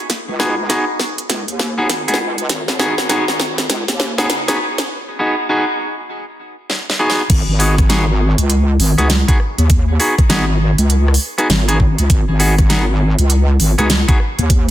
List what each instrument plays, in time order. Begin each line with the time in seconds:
0.10 snare, closed hi-hat
0.28 wobble bass C#2
0.39 clean electric guitar B3 D#4 F#4 G#4, snare
0.69 clean electric guitar B3 D#4 F#4 G#4, snare, closed hi-hat
1.00 snare
1.18 closed hi-hat
1.29 wobble bass C#2, snare, closed hi-hat
1.48 wobble bass D#2, closed hi-hat
1.59 snare
1.78 clean electric guitar B3 D#4 F#4 G#4
1.89 wobble bass G#1, snare, closed hi-hat
2.08 wobble bass C#2, clean electric guitar B3 D#4 F#4 G#4, closed hi-hat
2.14 snare
2.38 closed hi-hat
2.49 wobble bass G#1, snare, closed hi-hat
2.68 snare
2.79 clean electric guitar B3 D#4 F#4 G#4, snare
2.98 wobble bass G#1, snare
3.09 clean electric guitar B3 D#4 F#4 G#4, snare, closed hi-hat
3.28 wobble bass G#1, snare
3.40 snare
3.58 snare, closed hi-hat
3.70 wobble bass C#2, snare, closed hi-hat
3.88 wobble bass D#2, snare, closed hi-hat
4.00 snare
4.18 clean electric guitar B3 D#4 F#4 G#4, snare
4.29 wobble bass F#1, snare, closed hi-hat
4.48 clean electric guitar B3 D#4 F#4 G#4, snare, closed hi-hat
4.78 snare, closed hi-hat
5.19 clean electric guitar B3 D#4 F#4 G#4
5.49 clean electric guitar B3 D#4 F#4 G#4
6.70 snare
6.90 snare
6.99 clean electric guitar B3 D#4 F#4 G#4
7.10 snare
7.30 wobble bass G#1, kick, closed hi-hat, crash
7.48 wobble bass G#1
7.59 clean electric guitar B3 D#4 F#4 G#4, open hi-hat
7.78 kick, cross-stick, closed hi-hat
7.89 clean electric guitar B3 D#4 F#4 G#4, snare, closed hi-hat
8.38 wobble bass C#2, closed hi-hat
8.50 closed hi-hat
8.80 wobble bass G#1, open hi-hat
8.98 wobble bass C#2, clean electric guitar B3 D#4 F#4 G#4, cross-stick, closed hi-hat
9.10 snare, closed hi-hat
9.28 clean electric guitar B3 D#4 F#4 G#4, kick, closed hi-hat
9.40 cross-stick
9.58 wobble bass D#2, closed hi-hat
9.70 kick, closed hi-hat
9.99 clean electric guitar B3 D#4 F#4 G#4, open hi-hat
10.18 kick, cross-stick, closed hi-hat
10.29 wobble bass G#1, clean electric guitar B3 D#4 F#4 G#4, snare, closed hi-hat
10.78 wobble bass C#2, closed hi-hat
10.90 closed hi-hat
11.08 cross-stick
11.14 open hi-hat
11.38 clean electric guitar B3 D#4 F#4 G#4, cross-stick, closed hi-hat
11.50 wobble bass G#1, snare, closed hi-hat
11.68 clean electric guitar B3 D#4 F#4 G#4, closed hi-hat
11.80 kick
11.98 wobble bass C#2, closed hi-hat
12.10 wobble bass G#1, kick, closed hi-hat
12.29 wobble bass G#1
12.39 clean electric guitar B3 D#4 F#4 G#4, open hi-hat
12.58 kick, cross-stick, closed hi-hat
12.69 clean electric guitar B3 D#4 F#4 G#4, snare, closed hi-hat
13.18 wobble bass C#2, closed hi-hat
13.30 closed hi-hat
13.60 wobble bass G#1, open hi-hat
13.78 wobble bass C#2, clean electric guitar B3 D#4 F#4 G#4, cross-stick, closed hi-hat
13.90 snare, closed hi-hat
14.08 clean electric guitar B3 D#4 F#4 G#4, kick, closed hi-hat
14.20 cross-stick
14.39 wobble bass D#2, closed hi-hat
14.50 kick, closed hi-hat